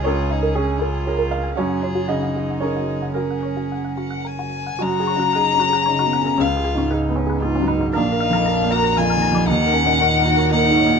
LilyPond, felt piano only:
<<
  \new Staff \with { instrumentName = "Felt piano" } { \time 3/4 \key ges \major \tempo 4 = 116 des''4 aes'4 r8 f''8 | des''4 ees''4 des''4 | bes'2~ bes'8 r8 | r2. |
r2. | r2. | r2. | }
  \new Staff \with { instrumentName = "Felt piano" } { \clef bass \time 3/4 \key ges \major des,4 des'4 <aes' bes'>4 | ges,4 des4 <des' aes' bes'>4~ | <des' aes' bes'>2. | \tuplet 3/2 { ges,8 aes'8 des8 aes'8 des'8 aes'8 des8 ces8 des8 } |
\tuplet 3/2 { des,8 aes'8 aes,8 aes'8 ces'8 aes'8 aes,8 ges,8 aes,8 } | \tuplet 3/2 { bes,,8 bes'8 f,8 bes'8 bes8 bes'8 f,8 ees,8 f,8 } | \tuplet 3/2 { ees,8 bes'8 bes,8 bes'8 bes8 bes'8 bes,8 aes,8 bes,8 } | }
>>